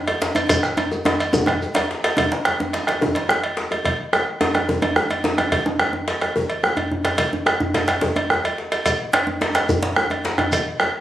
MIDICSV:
0, 0, Header, 1, 5, 480
1, 0, Start_track
1, 0, Tempo, 278552
1, 856, Time_signature, 12, 3, 24, 8
1, 18964, End_track
2, 0, Start_track
2, 0, Title_t, "Bombo"
2, 855, Note_on_c, 9, 43, 92
2, 1027, Note_off_c, 9, 43, 0
2, 1088, Note_on_c, 9, 37, 78
2, 1260, Note_off_c, 9, 37, 0
2, 1819, Note_on_c, 9, 37, 32
2, 1991, Note_off_c, 9, 37, 0
2, 2057, Note_on_c, 9, 37, 34
2, 2229, Note_off_c, 9, 37, 0
2, 2296, Note_on_c, 9, 43, 87
2, 2468, Note_off_c, 9, 43, 0
2, 2538, Note_on_c, 9, 37, 76
2, 2711, Note_off_c, 9, 37, 0
2, 2782, Note_on_c, 9, 37, 32
2, 2955, Note_off_c, 9, 37, 0
2, 3022, Note_on_c, 9, 37, 33
2, 3194, Note_off_c, 9, 37, 0
2, 3746, Note_on_c, 9, 43, 99
2, 3918, Note_off_c, 9, 43, 0
2, 4225, Note_on_c, 9, 37, 107
2, 4398, Note_off_c, 9, 37, 0
2, 4949, Note_on_c, 9, 37, 84
2, 5121, Note_off_c, 9, 37, 0
2, 5197, Note_on_c, 9, 43, 81
2, 5369, Note_off_c, 9, 43, 0
2, 5676, Note_on_c, 9, 37, 105
2, 5848, Note_off_c, 9, 37, 0
2, 6159, Note_on_c, 9, 37, 31
2, 6331, Note_off_c, 9, 37, 0
2, 6643, Note_on_c, 9, 43, 99
2, 6815, Note_off_c, 9, 43, 0
2, 7120, Note_on_c, 9, 37, 93
2, 7293, Note_off_c, 9, 37, 0
2, 7838, Note_on_c, 9, 37, 76
2, 8011, Note_off_c, 9, 37, 0
2, 8078, Note_on_c, 9, 43, 81
2, 8250, Note_off_c, 9, 43, 0
2, 8549, Note_on_c, 9, 37, 84
2, 8722, Note_off_c, 9, 37, 0
2, 9030, Note_on_c, 9, 37, 30
2, 9202, Note_off_c, 9, 37, 0
2, 9271, Note_on_c, 9, 37, 70
2, 9444, Note_off_c, 9, 37, 0
2, 9511, Note_on_c, 9, 43, 89
2, 9683, Note_off_c, 9, 43, 0
2, 9986, Note_on_c, 9, 37, 102
2, 10158, Note_off_c, 9, 37, 0
2, 10718, Note_on_c, 9, 37, 73
2, 10890, Note_off_c, 9, 37, 0
2, 10960, Note_on_c, 9, 43, 87
2, 11132, Note_off_c, 9, 43, 0
2, 11439, Note_on_c, 9, 37, 97
2, 11611, Note_off_c, 9, 37, 0
2, 11917, Note_on_c, 9, 37, 31
2, 12089, Note_off_c, 9, 37, 0
2, 12152, Note_on_c, 9, 37, 74
2, 12324, Note_off_c, 9, 37, 0
2, 12385, Note_on_c, 9, 37, 28
2, 12385, Note_on_c, 9, 43, 92
2, 12557, Note_off_c, 9, 37, 0
2, 12557, Note_off_c, 9, 43, 0
2, 12868, Note_on_c, 9, 37, 98
2, 13040, Note_off_c, 9, 37, 0
2, 13578, Note_on_c, 9, 37, 77
2, 13751, Note_off_c, 9, 37, 0
2, 13820, Note_on_c, 9, 43, 79
2, 13992, Note_off_c, 9, 43, 0
2, 14066, Note_on_c, 9, 37, 30
2, 14238, Note_off_c, 9, 37, 0
2, 14305, Note_on_c, 9, 37, 84
2, 14477, Note_off_c, 9, 37, 0
2, 15261, Note_on_c, 9, 43, 74
2, 15433, Note_off_c, 9, 43, 0
2, 15746, Note_on_c, 9, 37, 92
2, 15918, Note_off_c, 9, 37, 0
2, 16457, Note_on_c, 9, 37, 84
2, 16629, Note_off_c, 9, 37, 0
2, 16699, Note_on_c, 9, 43, 87
2, 16871, Note_off_c, 9, 43, 0
2, 17171, Note_on_c, 9, 37, 112
2, 17343, Note_off_c, 9, 37, 0
2, 17654, Note_on_c, 9, 37, 34
2, 17827, Note_off_c, 9, 37, 0
2, 17888, Note_on_c, 9, 37, 86
2, 18060, Note_off_c, 9, 37, 0
2, 18128, Note_on_c, 9, 43, 98
2, 18300, Note_off_c, 9, 43, 0
2, 18605, Note_on_c, 9, 37, 109
2, 18777, Note_off_c, 9, 37, 0
2, 18964, End_track
3, 0, Start_track
3, 0, Title_t, "Djembe"
3, 141, Note_on_c, 9, 63, 52
3, 313, Note_off_c, 9, 63, 0
3, 373, Note_on_c, 9, 62, 61
3, 374, Note_off_c, 9, 62, 0
3, 374, Note_on_c, 9, 62, 89
3, 547, Note_off_c, 9, 62, 0
3, 602, Note_on_c, 9, 63, 78
3, 775, Note_off_c, 9, 63, 0
3, 855, Note_on_c, 9, 63, 71
3, 855, Note_on_c, 9, 64, 64
3, 859, Note_off_c, 9, 63, 0
3, 859, Note_on_c, 9, 63, 101
3, 1027, Note_off_c, 9, 64, 0
3, 1031, Note_off_c, 9, 63, 0
3, 1097, Note_on_c, 9, 62, 53
3, 1269, Note_off_c, 9, 62, 0
3, 1330, Note_on_c, 9, 63, 102
3, 1503, Note_off_c, 9, 63, 0
3, 1577, Note_on_c, 9, 62, 20
3, 1577, Note_on_c, 9, 63, 58
3, 1749, Note_off_c, 9, 62, 0
3, 1749, Note_off_c, 9, 63, 0
3, 1815, Note_on_c, 9, 63, 109
3, 1830, Note_on_c, 9, 62, 78
3, 1988, Note_off_c, 9, 63, 0
3, 2002, Note_off_c, 9, 62, 0
3, 2291, Note_on_c, 9, 63, 111
3, 2305, Note_off_c, 9, 63, 0
3, 2305, Note_on_c, 9, 62, 22
3, 2305, Note_on_c, 9, 63, 78
3, 2305, Note_on_c, 9, 64, 79
3, 2477, Note_off_c, 9, 62, 0
3, 2477, Note_off_c, 9, 63, 0
3, 2477, Note_off_c, 9, 64, 0
3, 2520, Note_on_c, 9, 63, 112
3, 2552, Note_on_c, 9, 64, 42
3, 2692, Note_off_c, 9, 63, 0
3, 2724, Note_off_c, 9, 64, 0
3, 2795, Note_on_c, 9, 64, 49
3, 2968, Note_off_c, 9, 64, 0
3, 3011, Note_on_c, 9, 62, 98
3, 3041, Note_on_c, 9, 64, 52
3, 3183, Note_off_c, 9, 62, 0
3, 3214, Note_off_c, 9, 64, 0
3, 3286, Note_on_c, 9, 62, 60
3, 3458, Note_off_c, 9, 62, 0
3, 3519, Note_on_c, 9, 62, 66
3, 3692, Note_off_c, 9, 62, 0
3, 3736, Note_on_c, 9, 63, 102
3, 3765, Note_on_c, 9, 62, 23
3, 3765, Note_on_c, 9, 64, 71
3, 3908, Note_off_c, 9, 63, 0
3, 3937, Note_off_c, 9, 62, 0
3, 3937, Note_off_c, 9, 64, 0
3, 3993, Note_on_c, 9, 62, 82
3, 4165, Note_off_c, 9, 62, 0
3, 4229, Note_on_c, 9, 62, 74
3, 4250, Note_on_c, 9, 63, 77
3, 4401, Note_off_c, 9, 62, 0
3, 4422, Note_off_c, 9, 63, 0
3, 4482, Note_on_c, 9, 63, 107
3, 4655, Note_off_c, 9, 63, 0
3, 4720, Note_on_c, 9, 62, 74
3, 4893, Note_off_c, 9, 62, 0
3, 4962, Note_on_c, 9, 63, 63
3, 4974, Note_on_c, 9, 62, 75
3, 5135, Note_off_c, 9, 63, 0
3, 5146, Note_off_c, 9, 62, 0
3, 5194, Note_on_c, 9, 64, 73
3, 5204, Note_on_c, 9, 63, 112
3, 5366, Note_off_c, 9, 64, 0
3, 5377, Note_off_c, 9, 63, 0
3, 5446, Note_on_c, 9, 62, 77
3, 5618, Note_off_c, 9, 62, 0
3, 5668, Note_on_c, 9, 63, 68
3, 5696, Note_on_c, 9, 62, 77
3, 5840, Note_off_c, 9, 63, 0
3, 5868, Note_off_c, 9, 62, 0
3, 5924, Note_on_c, 9, 62, 21
3, 6096, Note_off_c, 9, 62, 0
3, 6151, Note_on_c, 9, 62, 69
3, 6323, Note_off_c, 9, 62, 0
3, 6395, Note_on_c, 9, 62, 24
3, 6395, Note_on_c, 9, 63, 58
3, 6567, Note_off_c, 9, 62, 0
3, 6567, Note_off_c, 9, 63, 0
3, 6627, Note_on_c, 9, 62, 20
3, 6627, Note_on_c, 9, 64, 62
3, 6799, Note_off_c, 9, 62, 0
3, 6799, Note_off_c, 9, 64, 0
3, 7115, Note_on_c, 9, 63, 73
3, 7288, Note_off_c, 9, 63, 0
3, 7594, Note_on_c, 9, 63, 100
3, 7596, Note_on_c, 9, 62, 78
3, 7767, Note_off_c, 9, 63, 0
3, 7769, Note_off_c, 9, 62, 0
3, 7834, Note_on_c, 9, 63, 63
3, 7842, Note_off_c, 9, 63, 0
3, 7842, Note_on_c, 9, 63, 68
3, 8015, Note_off_c, 9, 63, 0
3, 8076, Note_on_c, 9, 64, 71
3, 8082, Note_on_c, 9, 63, 92
3, 8248, Note_off_c, 9, 64, 0
3, 8254, Note_off_c, 9, 63, 0
3, 8308, Note_on_c, 9, 63, 106
3, 8480, Note_off_c, 9, 63, 0
3, 8546, Note_on_c, 9, 63, 75
3, 8550, Note_off_c, 9, 63, 0
3, 8550, Note_on_c, 9, 63, 77
3, 8722, Note_off_c, 9, 63, 0
3, 8791, Note_on_c, 9, 63, 67
3, 8801, Note_on_c, 9, 62, 26
3, 8963, Note_off_c, 9, 63, 0
3, 8973, Note_off_c, 9, 62, 0
3, 9029, Note_on_c, 9, 63, 109
3, 9044, Note_on_c, 9, 62, 76
3, 9202, Note_off_c, 9, 63, 0
3, 9217, Note_off_c, 9, 62, 0
3, 9274, Note_on_c, 9, 63, 80
3, 9280, Note_off_c, 9, 63, 0
3, 9280, Note_on_c, 9, 62, 24
3, 9280, Note_on_c, 9, 63, 56
3, 9452, Note_off_c, 9, 62, 0
3, 9452, Note_off_c, 9, 63, 0
3, 9509, Note_on_c, 9, 63, 71
3, 9516, Note_on_c, 9, 62, 24
3, 9516, Note_on_c, 9, 64, 73
3, 9681, Note_off_c, 9, 63, 0
3, 9688, Note_off_c, 9, 62, 0
3, 9688, Note_off_c, 9, 64, 0
3, 9752, Note_on_c, 9, 63, 100
3, 9924, Note_off_c, 9, 63, 0
3, 9988, Note_on_c, 9, 63, 73
3, 9993, Note_off_c, 9, 63, 0
3, 9993, Note_on_c, 9, 63, 74
3, 10165, Note_off_c, 9, 63, 0
3, 10220, Note_on_c, 9, 63, 76
3, 10392, Note_off_c, 9, 63, 0
3, 10471, Note_on_c, 9, 62, 78
3, 10644, Note_off_c, 9, 62, 0
3, 10720, Note_on_c, 9, 63, 66
3, 10893, Note_off_c, 9, 63, 0
3, 10955, Note_on_c, 9, 64, 82
3, 11127, Note_off_c, 9, 64, 0
3, 11433, Note_on_c, 9, 63, 79
3, 11606, Note_off_c, 9, 63, 0
3, 11660, Note_on_c, 9, 64, 78
3, 11666, Note_on_c, 9, 62, 21
3, 11832, Note_off_c, 9, 64, 0
3, 11839, Note_off_c, 9, 62, 0
3, 11916, Note_on_c, 9, 64, 86
3, 12088, Note_off_c, 9, 64, 0
3, 12143, Note_on_c, 9, 62, 23
3, 12143, Note_on_c, 9, 63, 57
3, 12144, Note_off_c, 9, 62, 0
3, 12144, Note_on_c, 9, 62, 76
3, 12315, Note_off_c, 9, 63, 0
3, 12317, Note_off_c, 9, 62, 0
3, 12379, Note_on_c, 9, 62, 73
3, 12379, Note_on_c, 9, 64, 63
3, 12552, Note_off_c, 9, 62, 0
3, 12552, Note_off_c, 9, 64, 0
3, 12630, Note_on_c, 9, 63, 77
3, 12802, Note_off_c, 9, 63, 0
3, 12856, Note_on_c, 9, 63, 66
3, 13028, Note_off_c, 9, 63, 0
3, 13103, Note_on_c, 9, 64, 99
3, 13106, Note_on_c, 9, 62, 21
3, 13275, Note_off_c, 9, 64, 0
3, 13279, Note_off_c, 9, 62, 0
3, 13345, Note_on_c, 9, 62, 79
3, 13345, Note_on_c, 9, 64, 82
3, 13517, Note_off_c, 9, 62, 0
3, 13518, Note_off_c, 9, 64, 0
3, 13573, Note_on_c, 9, 62, 72
3, 13577, Note_on_c, 9, 63, 58
3, 13745, Note_off_c, 9, 62, 0
3, 13750, Note_off_c, 9, 63, 0
3, 13809, Note_on_c, 9, 62, 82
3, 13821, Note_on_c, 9, 64, 75
3, 13981, Note_off_c, 9, 62, 0
3, 13994, Note_off_c, 9, 64, 0
3, 14060, Note_on_c, 9, 63, 83
3, 14232, Note_off_c, 9, 63, 0
3, 14305, Note_on_c, 9, 63, 69
3, 14477, Note_off_c, 9, 63, 0
3, 14546, Note_on_c, 9, 64, 39
3, 14718, Note_off_c, 9, 64, 0
3, 14790, Note_on_c, 9, 62, 45
3, 14963, Note_off_c, 9, 62, 0
3, 15025, Note_on_c, 9, 62, 57
3, 15197, Note_off_c, 9, 62, 0
3, 15268, Note_on_c, 9, 62, 23
3, 15268, Note_on_c, 9, 64, 73
3, 15441, Note_off_c, 9, 62, 0
3, 15441, Note_off_c, 9, 64, 0
3, 15739, Note_on_c, 9, 62, 94
3, 15912, Note_off_c, 9, 62, 0
3, 15973, Note_on_c, 9, 63, 78
3, 16145, Note_off_c, 9, 63, 0
3, 16217, Note_on_c, 9, 63, 83
3, 16226, Note_on_c, 9, 62, 76
3, 16389, Note_off_c, 9, 63, 0
3, 16398, Note_off_c, 9, 62, 0
3, 16454, Note_on_c, 9, 62, 74
3, 16460, Note_on_c, 9, 63, 67
3, 16626, Note_off_c, 9, 62, 0
3, 16632, Note_off_c, 9, 63, 0
3, 16699, Note_on_c, 9, 64, 80
3, 16700, Note_off_c, 9, 64, 0
3, 16700, Note_on_c, 9, 64, 84
3, 16872, Note_off_c, 9, 64, 0
3, 16932, Note_on_c, 9, 62, 101
3, 17104, Note_off_c, 9, 62, 0
3, 17174, Note_on_c, 9, 63, 79
3, 17185, Note_off_c, 9, 63, 0
3, 17185, Note_on_c, 9, 63, 82
3, 17357, Note_off_c, 9, 63, 0
3, 17409, Note_on_c, 9, 63, 75
3, 17424, Note_on_c, 9, 62, 25
3, 17581, Note_off_c, 9, 63, 0
3, 17596, Note_off_c, 9, 62, 0
3, 17658, Note_on_c, 9, 62, 82
3, 17667, Note_off_c, 9, 62, 0
3, 17667, Note_on_c, 9, 62, 79
3, 17840, Note_off_c, 9, 62, 0
3, 17888, Note_on_c, 9, 64, 82
3, 17902, Note_on_c, 9, 62, 27
3, 17902, Note_on_c, 9, 63, 64
3, 18061, Note_off_c, 9, 64, 0
3, 18074, Note_off_c, 9, 62, 0
3, 18074, Note_off_c, 9, 63, 0
3, 18144, Note_on_c, 9, 62, 27
3, 18144, Note_on_c, 9, 64, 77
3, 18316, Note_off_c, 9, 62, 0
3, 18316, Note_off_c, 9, 64, 0
3, 18613, Note_on_c, 9, 63, 84
3, 18785, Note_off_c, 9, 63, 0
3, 18964, End_track
4, 0, Start_track
4, 0, Title_t, "Shekere"
4, 615, Note_on_c, 9, 82, 21
4, 787, Note_off_c, 9, 82, 0
4, 859, Note_on_c, 9, 82, 64
4, 1031, Note_off_c, 9, 82, 0
4, 1097, Note_on_c, 9, 82, 21
4, 1270, Note_off_c, 9, 82, 0
4, 1334, Note_on_c, 9, 82, 19
4, 1506, Note_off_c, 9, 82, 0
4, 1579, Note_on_c, 9, 82, 17
4, 1751, Note_off_c, 9, 82, 0
4, 2066, Note_on_c, 9, 82, 20
4, 2239, Note_off_c, 9, 82, 0
4, 2304, Note_on_c, 9, 82, 64
4, 2476, Note_off_c, 9, 82, 0
4, 2786, Note_on_c, 9, 82, 20
4, 2959, Note_off_c, 9, 82, 0
4, 3021, Note_on_c, 9, 82, 19
4, 3194, Note_off_c, 9, 82, 0
4, 15266, Note_on_c, 9, 82, 60
4, 15438, Note_off_c, 9, 82, 0
4, 16700, Note_on_c, 9, 82, 54
4, 16873, Note_off_c, 9, 82, 0
4, 18128, Note_on_c, 9, 82, 55
4, 18301, Note_off_c, 9, 82, 0
4, 18964, End_track
5, 0, Start_track
5, 0, Title_t, "Drums"
5, 130, Note_on_c, 9, 56, 49
5, 302, Note_off_c, 9, 56, 0
5, 617, Note_on_c, 9, 56, 49
5, 789, Note_off_c, 9, 56, 0
5, 851, Note_on_c, 9, 56, 61
5, 1023, Note_off_c, 9, 56, 0
5, 1338, Note_on_c, 9, 56, 51
5, 1510, Note_off_c, 9, 56, 0
5, 1826, Note_on_c, 9, 56, 46
5, 1998, Note_off_c, 9, 56, 0
5, 2075, Note_on_c, 9, 56, 53
5, 2247, Note_off_c, 9, 56, 0
5, 2554, Note_on_c, 9, 56, 49
5, 2726, Note_off_c, 9, 56, 0
5, 3039, Note_on_c, 9, 56, 53
5, 3212, Note_off_c, 9, 56, 0
5, 3518, Note_on_c, 9, 56, 58
5, 3691, Note_off_c, 9, 56, 0
5, 3757, Note_on_c, 9, 56, 57
5, 3929, Note_off_c, 9, 56, 0
5, 4238, Note_on_c, 9, 56, 44
5, 4410, Note_off_c, 9, 56, 0
5, 4711, Note_on_c, 9, 56, 43
5, 4883, Note_off_c, 9, 56, 0
5, 4961, Note_on_c, 9, 56, 50
5, 5133, Note_off_c, 9, 56, 0
5, 5430, Note_on_c, 9, 56, 46
5, 5602, Note_off_c, 9, 56, 0
5, 5920, Note_on_c, 9, 56, 49
5, 6093, Note_off_c, 9, 56, 0
5, 6406, Note_on_c, 9, 56, 48
5, 6578, Note_off_c, 9, 56, 0
5, 6642, Note_on_c, 9, 56, 55
5, 6814, Note_off_c, 9, 56, 0
5, 7123, Note_on_c, 9, 56, 43
5, 7295, Note_off_c, 9, 56, 0
5, 7595, Note_on_c, 9, 56, 45
5, 7768, Note_off_c, 9, 56, 0
5, 7833, Note_on_c, 9, 56, 42
5, 8005, Note_off_c, 9, 56, 0
5, 8313, Note_on_c, 9, 56, 48
5, 8485, Note_off_c, 9, 56, 0
5, 8799, Note_on_c, 9, 56, 52
5, 8971, Note_off_c, 9, 56, 0
5, 9277, Note_on_c, 9, 56, 49
5, 9449, Note_off_c, 9, 56, 0
5, 9513, Note_on_c, 9, 56, 54
5, 9685, Note_off_c, 9, 56, 0
5, 9992, Note_on_c, 9, 56, 45
5, 10164, Note_off_c, 9, 56, 0
5, 10472, Note_on_c, 9, 56, 46
5, 10644, Note_off_c, 9, 56, 0
5, 10709, Note_on_c, 9, 56, 45
5, 10881, Note_off_c, 9, 56, 0
5, 11193, Note_on_c, 9, 56, 50
5, 11366, Note_off_c, 9, 56, 0
5, 11668, Note_on_c, 9, 56, 51
5, 11840, Note_off_c, 9, 56, 0
5, 12141, Note_on_c, 9, 56, 62
5, 12313, Note_off_c, 9, 56, 0
5, 12373, Note_on_c, 9, 56, 71
5, 12546, Note_off_c, 9, 56, 0
5, 12864, Note_on_c, 9, 56, 53
5, 13036, Note_off_c, 9, 56, 0
5, 13351, Note_on_c, 9, 56, 54
5, 13523, Note_off_c, 9, 56, 0
5, 13589, Note_on_c, 9, 56, 56
5, 13761, Note_off_c, 9, 56, 0
5, 14069, Note_on_c, 9, 56, 50
5, 14241, Note_off_c, 9, 56, 0
5, 14561, Note_on_c, 9, 56, 52
5, 14734, Note_off_c, 9, 56, 0
5, 15025, Note_on_c, 9, 56, 51
5, 15197, Note_off_c, 9, 56, 0
5, 15261, Note_on_c, 9, 56, 65
5, 15434, Note_off_c, 9, 56, 0
5, 15754, Note_on_c, 9, 56, 53
5, 15926, Note_off_c, 9, 56, 0
5, 16229, Note_on_c, 9, 56, 42
5, 16402, Note_off_c, 9, 56, 0
5, 16469, Note_on_c, 9, 56, 44
5, 16641, Note_off_c, 9, 56, 0
5, 17422, Note_on_c, 9, 56, 48
5, 17594, Note_off_c, 9, 56, 0
5, 17901, Note_on_c, 9, 56, 48
5, 18073, Note_off_c, 9, 56, 0
5, 18143, Note_on_c, 9, 56, 61
5, 18316, Note_off_c, 9, 56, 0
5, 18621, Note_on_c, 9, 56, 45
5, 18793, Note_off_c, 9, 56, 0
5, 18964, End_track
0, 0, End_of_file